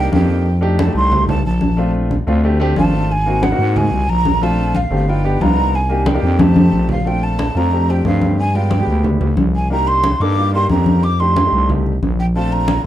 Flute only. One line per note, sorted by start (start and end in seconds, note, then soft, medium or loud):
0.00 0.12 G5 loud
0.14 0.60 G5 medium
0.81 0.95 A5 medium
0.96 1.27 C6 loud
1.29 1.44 A5 loud
1.46 1.92 A5 medium
2.78 3.13 A5 loud
3.12 3.45 G#5 loud
3.43 3.78 F#5 medium
3.77 4.11 G#5 loud
4.09 4.45 A#5 loud
4.43 4.77 A5 loud
4.76 5.11 F5 medium
5.09 5.43 G5 medium
5.42 5.77 A#5 loud
5.75 6.08 G#5 medium
6.07 6.42 G5 medium
6.41 6.90 A5 medium
6.91 7.09 F5 medium
7.07 7.25 G5 loud
7.23 7.59 A5 medium
7.57 7.92 A#5 medium
7.90 8.06 G5 medium
8.06 8.37 F5 medium
8.39 8.57 G#5 loud
8.55 9.05 G5 medium
9.55 9.70 G#5 medium
9.72 9.89 A#5 loud
9.87 10.22 C6 loud
10.21 10.54 D6 loud
10.55 10.70 C6 loud
10.70 11.05 A#5 medium
11.03 11.21 D6 loud
11.20 11.70 C6 loud
12.19 12.25 G5 medium
12.36 12.54 A5 medium
12.52 12.84 A#5 loud